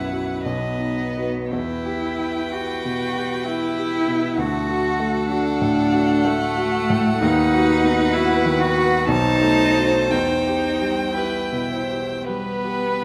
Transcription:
Already playing: B1 F#2 B3 E4 F#4 B4 F#5
0.12 F#4
0.45 B1 B3 D#5
0.79 D#4
1.17 F#4 B4
1.51 E2 E4 B4 G5
1.85 G4
2.20 E4
2.52 F#4 G4
2.85 B2
3.16 G4
3.44 E4
3.77 G4
4.08 B2
4.37 D2 F#4 A4 F#5
4.68 F#4
5.00 A3
5.29 D4 F#4
5.62 A2
5.93 F#4
6.25 A3
6.57 F#4
6.90 A2
7.21 D#2 D#4 B4
7.54 F#4
7.84 B3
8.13 E4 F#4
8.45 D#3
8.59 F#4
8.75 F#4
9.06 B1 D#4 C5 A5
9.42 A3
9.77 F#4 C5
10.09 E2 D#4 G5
10.47 G4
10.81 G3
11.13 E4 G4 B4
11.52 B2
11.72 C5
11.90 G4
12.25 G3 B3 B4
12.65 G4

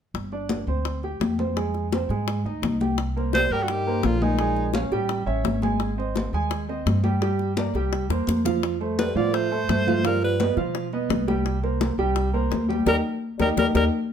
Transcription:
0.14 G1, high bongo, high conga
0.32 D4 D5, high conga
0.49 high bongo, high conga
0.67 D2 C4 C5, high conga
0.85 high bongo, high conga
1.03 G4 G5, high conga
1.20 F2, high bongo, low bongo, high conga
1.39 C4 C5, high conga
1.56 G#3 G#4, high bongo, high conga
1.74 high bongo, high conga
1.92 C4 C5, high bongo, high conga
2.09 G#2 G#3 G#4, high bongo, high conga
2.28 high bongo, high conga
2.45 D2 D#4 D#5, high conga
2.62 C2, high bongo, low bongo, high conga
2.81 G4 G5, high bongo, high conga
2.98 high bongo, high conga
3.16 A#3 A#4 C5, high conga
3.33 G3 C5, high bongo, high conga
3.50 G2 G3 G4 A#4 G5, high conga
3.63 D3 F#4
3.68 D#3 G4, high bongo, high conga
3.87 A#3 A#4 C5, high conga
4.03 A#1 D3 F4, high bongo, low bongo, high conga
4.22 A#2 G#3 D#4 G#4 G#5, high conga
4.39 G#3 G#4 G#5, high bongo, high conga
4.56 high bongo, high conga
4.74 C#4 C#5 F5, high bongo, high conga
4.91 A1 G3 G4 G5, high bongo, high conga
5.09 high bongo, high conga
5.26 A1 C#4 C#5 E5, high conga
5.44 G#1, high bongo, low bongo, high conga
5.62 G#3 G#4 G#5, high bongo, high conga
5.80 high bongo, high conga
5.98 C4 C5 D#5, high conga
6.16 high bongo, high conga
6.33 D#2 G#3 G#4 G#5, high conga
6.51 high bongo, high conga
6.69 C4 C5 D#5, high conga
6.86 G2, high bongo, low bongo, high conga
7.03 G3 G4 G5, high conga
7.22 G3 G4 G5, high bongo, high conga
7.39 high bongo, high conga
7.57 A#3 A#4 D5, high bongo, high conga
7.74 C2 G3 G4 G5, high bongo, high conga
7.92 high bongo, high conga
8.09 E2 A#3 A#4 C5, high bongo, high conga
8.27 F2, low bongo, high conga
8.45 F3 F4 F5, low bongo, high conga
8.63 high bongo
8.80 A3 A4 C5, high conga
8.97 G3 B4, high bongo, high conga
9.15 A2 F3 B3 F4 D5 F5, high conga
9.33 A3 C5, high bongo, high conga
9.51 A3 A4 C5, high conga
9.69 G2, high bongo, low bongo, high conga
9.87 F3 F4 F5, high conga
10.04 F3 G3 F4 A#4 F5, high bongo
10.22 G3 B4, high bongo, high conga
10.40 B3 B4 D#5, high bongo, high conga
10.57 B2 F3 F4 F5, high bongo, high conga
10.75 high bongo, high conga
10.93 B3 B4 D#5, high conga
11.09 C2, high bongo, low bongo, high conga
11.28 G3 G4 G5, high bongo, high conga
11.46 high bongo, high conga
11.63 A#3 A#4 C5, high conga
11.81 high bongo, high conga
11.98 C2 G3 G4 G5, high conga
12.16 high bongo, high conga
12.33 A#3 A#4 C5, high conga
12.50 D#2, high bongo, low bongo, high conga
12.68 G3 G4 G5, high conga
12.86 D#2 G3 D#4 G4 A#4, low bongo, high conga
13.39 D#2 G3 D#4 G4 A#4, low bongo, high conga
13.57 D#2 G3 D#4 G4 A#4, low bongo, high conga
13.75 D#2 G3 D#4 G4 A#4, low bongo, high conga

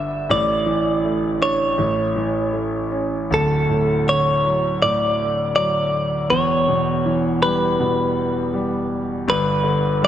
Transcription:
Already playing: G1 G2 D3 B3 D4 E5
0.29 A1 A2 D5
0.66 E3
1.04 A3
1.41 D4 C#5
1.78 A1 A2
2.16 E3
2.53 A3
2.92 C#4
3.30 D1 D2 A4
3.68 A2
4.06 D3 C#5
4.44 F#3
4.82 A2 D5
5.55 F#3 D5
6.30 E1 E2 C#5
6.68 B2
7.06 E3
7.43 G3 B4
7.80 B2
8.54 G3
9.28 G1 G2 B4
9.63 D3
10.02 G3 D5

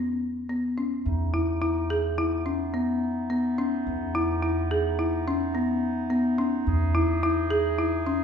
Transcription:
Already playing: E2 B3
0.50 B3
0.78 C#4
1.04 E2 E3 B3 D#4
1.34 E4
1.62 E4
1.90 G#4
2.18 E4
2.46 C#4
2.74 B3
3.30 B3
3.58 C#4
3.87 E2
4.15 E4
4.43 E4
4.71 G#4
4.99 E4
5.28 C#4
5.55 B3
6.10 B3
6.38 C#4
6.67 E2 E3 G#4
6.95 E4
7.23 E4
7.51 G#4
7.79 E4
8.07 C#4

